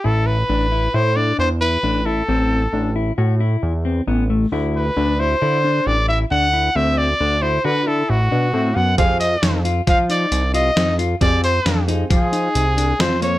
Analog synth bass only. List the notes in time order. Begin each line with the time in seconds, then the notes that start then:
0.05 A1
0.49 A1
0.94 A2
1.38 E2
1.83 A1
2.29 A1
2.73 A1
3.18 A2
3.63 E2
4.07 A1
4.52 D2
4.97 D2
5.42 D3
5.87 A1
6.31 D2
6.76 D2
7.21 D2
7.65 D3
8.10 A1
8.32 B2
8.54 A2
8.76 F#2
8.98 F2
9.42 F2
9.87 F3
10.32 C2
10.77 F2
11.21 F2
11.66 F2
12.10 F3
12.55 C2
13.00 F2